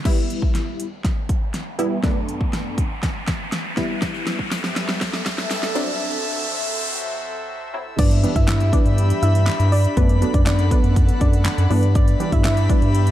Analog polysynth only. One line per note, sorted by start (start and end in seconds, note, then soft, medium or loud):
0.05 0.86 G3 medium
0.05 0.86 B3 medium
0.05 0.86 E4 loud
1.78 1.99 G3 medium
1.78 1.99 B3 medium
1.78 1.99 E4 loud
2.03 2.84 F#2 medium
2.03 2.84 A3 medium
2.03 2.84 B3 medium
2.03 2.84 D4 loud
3.77 4.58 G3 medium
3.77 4.58 B3 medium
3.77 4.58 E4 loud
5.75 6.56 F#3 loud
5.75 6.56 C4 medium
5.75 6.56 D4 loud
7.74 7.94 F#3 medium
7.74 7.94 C4 medium
7.74 7.94 E4 loud
7.98 8.19 E3 medium
7.98 8.19 G3 medium
7.98 8.19 B3 medium
7.98 8.19 D4 medium
8.23 8.64 E3 medium
8.23 8.64 G3 medium
8.23 8.64 B3 medium
8.23 8.64 D4 medium
8.73 9.54 E3 medium
8.73 9.54 G3 medium
8.73 9.54 B3 medium
8.73 9.54 D4 medium
9.97 10.17 F#3 medium
9.97 10.17 A3 medium
9.97 10.17 B3 medium
9.97 10.17 D4 medium
10.21 10.62 F#3 medium
10.21 10.62 A3 medium
10.21 10.62 B3 medium
10.21 10.62 D4 medium
10.71 11.52 F#3 medium
10.71 11.52 A3 medium
10.71 11.52 B3 medium
10.71 11.52 D4 medium
11.70 12.11 E3 medium
11.70 12.11 G3 medium
11.70 12.11 B3 medium
11.70 12.11 D4 medium
12.20 12.60 E3 medium
12.20 12.60 G3 medium
12.20 12.60 B3 medium
12.20 12.61 D4 medium
12.69 13.11 E3 medium
12.69 13.11 G3 medium
12.69 13.11 B3 medium
12.69 13.11 D4 medium